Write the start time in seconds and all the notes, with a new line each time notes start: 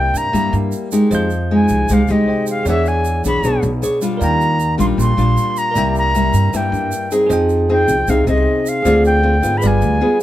Already playing: C3 A#3 E4 G4 A#4 D5 E5 G5
0.14 G2 A#5, shaker
0.33 G2 G3 A#3 E4 G4, shaker
0.53 G2, shaker
0.72 shaker
0.92 G#3 D#4 G4, shaker
1.11 F2 F3 C5 D#5 G6, shaker
1.30 shaker
1.51 G#3 D#4 G#5
1.69 C2, shaker
1.89 C2 C3 G#3 D#4 G4, shaker
1.93 F5
2.08 C2 G#3 D#4 G4 D#5, shaker
2.28 C5 D#5 G5
2.47 F5, shaker
2.63 E2 G#4 C#5 D5, shaker
2.68 E3 D4 G#4 C#5 E5 F#5
2.86 G#5, shaker
3.05 shaker
3.24 B1 D4 G#4 C#5 B5, shaker
3.43 B1 B2 D4 G#4 C#5, shaker
3.63 B1, shaker
3.82 D4 G#4 C#5, shaker
4.01 G3 D4 F4, shaker
4.17 D#2 D#3 A#4 D5
4.21 F5 G5 A#5, shaker
4.41 shaker
4.60 shaker
4.78 A#1 G3 D4 F4 C6, shaker
4.97 A#1 A#2 C6, shaker
5.17 A#1 G3 D4 F4, shaker
5.37 shaker
5.57 A#5, shaker
5.72 C2 C3 A#4 D5
5.76 G3 A#3 E4 E5 G5, shaker
5.95 A#5, shaker
6.15 G3 A#3 E4, shaker
6.34 G2, shaker
6.53 G2 G3 A#3 E4 G5, shaker
6.72 G2, shaker
6.92 shaker
7.11 C4 D#4 G#4, shaker
7.27 F2 F3 G#4 C5
7.31 D#5 G5, shaker
7.49 shaker
7.69 C4 D#4 G#4 G5
7.88 C2, shaker
8.08 C2 C3 C4 D#4 G#4 F5, shaker
8.27 C2 C4 D#4 G#4 D#5, shaker
8.66 F5, shaker
8.83 D2 D3 C4 F4 G#4 C5, shaker
8.87 D5 F5
9.05 G5, shaker
9.23 C4 F4 G#4
9.42 G#2 B3 F4, shaker
9.57 G#4 B4 B5
9.62 G1 G3 D5 F5, shaker
9.67 G#5
9.82 D2, shaker
10.01 B3 F4 G#4